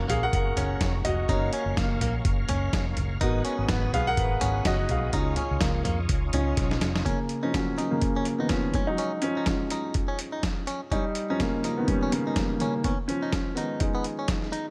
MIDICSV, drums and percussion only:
0, 0, Header, 1, 2, 480
1, 0, Start_track
1, 0, Key_signature, 6, "major"
1, 0, Tempo, 481541
1, 1286, Time_signature, 4, 2, 24, 8
1, 14656, End_track
2, 0, Start_track
2, 0, Title_t, "Drums"
2, 94, Note_on_c, 9, 43, 67
2, 96, Note_on_c, 9, 42, 77
2, 194, Note_off_c, 9, 43, 0
2, 195, Note_off_c, 9, 42, 0
2, 330, Note_on_c, 9, 36, 111
2, 330, Note_on_c, 9, 42, 89
2, 429, Note_off_c, 9, 36, 0
2, 430, Note_off_c, 9, 42, 0
2, 568, Note_on_c, 9, 42, 89
2, 573, Note_on_c, 9, 43, 65
2, 667, Note_off_c, 9, 42, 0
2, 673, Note_off_c, 9, 43, 0
2, 804, Note_on_c, 9, 42, 86
2, 806, Note_on_c, 9, 36, 103
2, 807, Note_on_c, 9, 38, 104
2, 904, Note_off_c, 9, 42, 0
2, 906, Note_off_c, 9, 36, 0
2, 907, Note_off_c, 9, 38, 0
2, 1045, Note_on_c, 9, 42, 75
2, 1048, Note_on_c, 9, 43, 62
2, 1144, Note_off_c, 9, 42, 0
2, 1147, Note_off_c, 9, 43, 0
2, 1285, Note_on_c, 9, 36, 109
2, 1286, Note_on_c, 9, 42, 74
2, 1385, Note_off_c, 9, 36, 0
2, 1385, Note_off_c, 9, 42, 0
2, 1521, Note_on_c, 9, 42, 75
2, 1621, Note_off_c, 9, 42, 0
2, 1767, Note_on_c, 9, 36, 87
2, 1767, Note_on_c, 9, 38, 90
2, 1774, Note_on_c, 9, 42, 72
2, 1866, Note_off_c, 9, 36, 0
2, 1866, Note_off_c, 9, 38, 0
2, 1873, Note_off_c, 9, 42, 0
2, 2005, Note_on_c, 9, 43, 68
2, 2007, Note_on_c, 9, 42, 80
2, 2104, Note_off_c, 9, 43, 0
2, 2106, Note_off_c, 9, 42, 0
2, 2242, Note_on_c, 9, 42, 84
2, 2243, Note_on_c, 9, 36, 122
2, 2342, Note_off_c, 9, 36, 0
2, 2342, Note_off_c, 9, 42, 0
2, 2478, Note_on_c, 9, 42, 90
2, 2483, Note_on_c, 9, 43, 66
2, 2577, Note_off_c, 9, 42, 0
2, 2583, Note_off_c, 9, 43, 0
2, 2722, Note_on_c, 9, 36, 115
2, 2722, Note_on_c, 9, 42, 84
2, 2725, Note_on_c, 9, 38, 99
2, 2822, Note_off_c, 9, 36, 0
2, 2822, Note_off_c, 9, 42, 0
2, 2825, Note_off_c, 9, 38, 0
2, 2958, Note_on_c, 9, 42, 67
2, 2961, Note_on_c, 9, 43, 64
2, 3058, Note_off_c, 9, 42, 0
2, 3061, Note_off_c, 9, 43, 0
2, 3200, Note_on_c, 9, 42, 81
2, 3202, Note_on_c, 9, 36, 109
2, 3299, Note_off_c, 9, 42, 0
2, 3302, Note_off_c, 9, 36, 0
2, 3435, Note_on_c, 9, 42, 68
2, 3535, Note_off_c, 9, 42, 0
2, 3674, Note_on_c, 9, 38, 97
2, 3680, Note_on_c, 9, 36, 103
2, 3681, Note_on_c, 9, 42, 63
2, 3774, Note_off_c, 9, 38, 0
2, 3780, Note_off_c, 9, 36, 0
2, 3781, Note_off_c, 9, 42, 0
2, 3924, Note_on_c, 9, 43, 72
2, 3926, Note_on_c, 9, 42, 79
2, 4024, Note_off_c, 9, 43, 0
2, 4025, Note_off_c, 9, 42, 0
2, 4160, Note_on_c, 9, 42, 89
2, 4161, Note_on_c, 9, 36, 108
2, 4260, Note_off_c, 9, 42, 0
2, 4261, Note_off_c, 9, 36, 0
2, 4396, Note_on_c, 9, 42, 92
2, 4402, Note_on_c, 9, 43, 72
2, 4496, Note_off_c, 9, 42, 0
2, 4502, Note_off_c, 9, 43, 0
2, 4636, Note_on_c, 9, 42, 84
2, 4637, Note_on_c, 9, 36, 106
2, 4639, Note_on_c, 9, 38, 114
2, 4735, Note_off_c, 9, 42, 0
2, 4737, Note_off_c, 9, 36, 0
2, 4738, Note_off_c, 9, 38, 0
2, 4873, Note_on_c, 9, 42, 64
2, 4876, Note_on_c, 9, 43, 63
2, 4972, Note_off_c, 9, 42, 0
2, 4975, Note_off_c, 9, 43, 0
2, 5113, Note_on_c, 9, 42, 85
2, 5116, Note_on_c, 9, 36, 99
2, 5213, Note_off_c, 9, 42, 0
2, 5215, Note_off_c, 9, 36, 0
2, 5344, Note_on_c, 9, 42, 70
2, 5349, Note_on_c, 9, 43, 64
2, 5444, Note_off_c, 9, 42, 0
2, 5448, Note_off_c, 9, 43, 0
2, 5588, Note_on_c, 9, 38, 98
2, 5595, Note_on_c, 9, 36, 94
2, 5595, Note_on_c, 9, 42, 77
2, 5688, Note_off_c, 9, 38, 0
2, 5695, Note_off_c, 9, 36, 0
2, 5695, Note_off_c, 9, 42, 0
2, 5831, Note_on_c, 9, 43, 75
2, 5832, Note_on_c, 9, 42, 80
2, 5930, Note_off_c, 9, 43, 0
2, 5932, Note_off_c, 9, 42, 0
2, 6070, Note_on_c, 9, 42, 82
2, 6074, Note_on_c, 9, 36, 100
2, 6170, Note_off_c, 9, 42, 0
2, 6174, Note_off_c, 9, 36, 0
2, 6309, Note_on_c, 9, 42, 90
2, 6315, Note_on_c, 9, 43, 75
2, 6409, Note_off_c, 9, 42, 0
2, 6415, Note_off_c, 9, 43, 0
2, 6551, Note_on_c, 9, 42, 78
2, 6553, Note_on_c, 9, 36, 105
2, 6553, Note_on_c, 9, 38, 49
2, 6651, Note_off_c, 9, 42, 0
2, 6652, Note_off_c, 9, 38, 0
2, 6653, Note_off_c, 9, 36, 0
2, 6691, Note_on_c, 9, 38, 75
2, 6790, Note_off_c, 9, 38, 0
2, 6790, Note_on_c, 9, 42, 73
2, 6792, Note_on_c, 9, 38, 87
2, 6890, Note_off_c, 9, 42, 0
2, 6892, Note_off_c, 9, 38, 0
2, 6933, Note_on_c, 9, 38, 89
2, 7033, Note_off_c, 9, 38, 0
2, 7035, Note_on_c, 9, 36, 77
2, 7038, Note_on_c, 9, 42, 65
2, 7135, Note_off_c, 9, 36, 0
2, 7137, Note_off_c, 9, 42, 0
2, 7268, Note_on_c, 9, 42, 59
2, 7368, Note_off_c, 9, 42, 0
2, 7517, Note_on_c, 9, 38, 88
2, 7518, Note_on_c, 9, 36, 81
2, 7524, Note_on_c, 9, 42, 62
2, 7617, Note_off_c, 9, 38, 0
2, 7618, Note_off_c, 9, 36, 0
2, 7624, Note_off_c, 9, 42, 0
2, 7759, Note_on_c, 9, 42, 66
2, 7859, Note_off_c, 9, 42, 0
2, 7990, Note_on_c, 9, 42, 70
2, 7995, Note_on_c, 9, 36, 88
2, 8089, Note_off_c, 9, 42, 0
2, 8095, Note_off_c, 9, 36, 0
2, 8227, Note_on_c, 9, 42, 72
2, 8327, Note_off_c, 9, 42, 0
2, 8464, Note_on_c, 9, 42, 70
2, 8467, Note_on_c, 9, 38, 88
2, 8473, Note_on_c, 9, 36, 87
2, 8564, Note_off_c, 9, 42, 0
2, 8566, Note_off_c, 9, 38, 0
2, 8573, Note_off_c, 9, 36, 0
2, 8708, Note_on_c, 9, 42, 58
2, 8715, Note_on_c, 9, 36, 83
2, 8808, Note_off_c, 9, 42, 0
2, 8814, Note_off_c, 9, 36, 0
2, 8954, Note_on_c, 9, 42, 66
2, 9054, Note_off_c, 9, 42, 0
2, 9188, Note_on_c, 9, 42, 70
2, 9287, Note_off_c, 9, 42, 0
2, 9430, Note_on_c, 9, 38, 84
2, 9437, Note_on_c, 9, 42, 58
2, 9438, Note_on_c, 9, 36, 72
2, 9530, Note_off_c, 9, 38, 0
2, 9537, Note_off_c, 9, 42, 0
2, 9538, Note_off_c, 9, 36, 0
2, 9673, Note_on_c, 9, 42, 71
2, 9773, Note_off_c, 9, 42, 0
2, 9911, Note_on_c, 9, 42, 76
2, 9917, Note_on_c, 9, 36, 88
2, 10010, Note_off_c, 9, 42, 0
2, 10017, Note_off_c, 9, 36, 0
2, 10154, Note_on_c, 9, 42, 72
2, 10254, Note_off_c, 9, 42, 0
2, 10397, Note_on_c, 9, 42, 74
2, 10399, Note_on_c, 9, 36, 97
2, 10400, Note_on_c, 9, 38, 98
2, 10497, Note_off_c, 9, 42, 0
2, 10499, Note_off_c, 9, 36, 0
2, 10500, Note_off_c, 9, 38, 0
2, 10638, Note_on_c, 9, 42, 59
2, 10738, Note_off_c, 9, 42, 0
2, 10881, Note_on_c, 9, 36, 83
2, 10882, Note_on_c, 9, 42, 68
2, 10980, Note_off_c, 9, 36, 0
2, 10982, Note_off_c, 9, 42, 0
2, 11115, Note_on_c, 9, 42, 68
2, 11215, Note_off_c, 9, 42, 0
2, 11363, Note_on_c, 9, 38, 83
2, 11364, Note_on_c, 9, 36, 76
2, 11369, Note_on_c, 9, 42, 60
2, 11462, Note_off_c, 9, 38, 0
2, 11464, Note_off_c, 9, 36, 0
2, 11469, Note_off_c, 9, 42, 0
2, 11603, Note_on_c, 9, 42, 63
2, 11703, Note_off_c, 9, 42, 0
2, 11841, Note_on_c, 9, 42, 74
2, 11843, Note_on_c, 9, 36, 95
2, 11941, Note_off_c, 9, 42, 0
2, 11943, Note_off_c, 9, 36, 0
2, 12084, Note_on_c, 9, 42, 76
2, 12184, Note_off_c, 9, 42, 0
2, 12320, Note_on_c, 9, 42, 75
2, 12322, Note_on_c, 9, 36, 94
2, 12322, Note_on_c, 9, 38, 89
2, 12419, Note_off_c, 9, 42, 0
2, 12422, Note_off_c, 9, 36, 0
2, 12422, Note_off_c, 9, 38, 0
2, 12561, Note_on_c, 9, 42, 61
2, 12661, Note_off_c, 9, 42, 0
2, 12802, Note_on_c, 9, 42, 72
2, 12804, Note_on_c, 9, 36, 90
2, 12902, Note_off_c, 9, 42, 0
2, 12903, Note_off_c, 9, 36, 0
2, 13045, Note_on_c, 9, 42, 62
2, 13145, Note_off_c, 9, 42, 0
2, 13283, Note_on_c, 9, 38, 85
2, 13285, Note_on_c, 9, 36, 88
2, 13290, Note_on_c, 9, 42, 55
2, 13382, Note_off_c, 9, 38, 0
2, 13385, Note_off_c, 9, 36, 0
2, 13389, Note_off_c, 9, 42, 0
2, 13526, Note_on_c, 9, 42, 67
2, 13626, Note_off_c, 9, 42, 0
2, 13757, Note_on_c, 9, 42, 65
2, 13763, Note_on_c, 9, 36, 99
2, 13857, Note_off_c, 9, 42, 0
2, 13863, Note_off_c, 9, 36, 0
2, 13999, Note_on_c, 9, 42, 70
2, 14099, Note_off_c, 9, 42, 0
2, 14234, Note_on_c, 9, 42, 81
2, 14237, Note_on_c, 9, 38, 86
2, 14240, Note_on_c, 9, 36, 83
2, 14334, Note_off_c, 9, 42, 0
2, 14337, Note_off_c, 9, 38, 0
2, 14339, Note_off_c, 9, 36, 0
2, 14376, Note_on_c, 9, 38, 31
2, 14476, Note_off_c, 9, 38, 0
2, 14482, Note_on_c, 9, 42, 63
2, 14581, Note_off_c, 9, 42, 0
2, 14656, End_track
0, 0, End_of_file